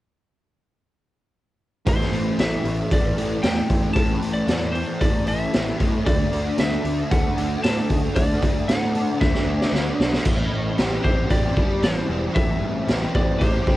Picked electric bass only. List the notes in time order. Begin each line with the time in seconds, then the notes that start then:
1.86 A1
2.12 A1
2.38 A1
2.64 A1
2.91 A1
3.17 A1
3.43 E2
3.70 A1
3.96 A1
4.22 A1
4.47 E2
5.01 A1
5.28 A1
5.54 A1
5.80 A2
6.07 D2
6.33 D2
6.59 D2
6.84 D2
7.12 D2
7.38 D2
7.65 A2
7.91 D2
8.16 D2
8.43 D2
8.69 A2
9.21 D2
9.46 D2
9.72 D2
10.00 B1
10.26 A1
10.52 A1
10.79 A1
11.04 A1
11.31 A1
11.57 G1
11.82 A1
12.09 E1
12.36 A1
12.61 A1
12.87 A1
13.15 A1
13.41 A1
13.67 G1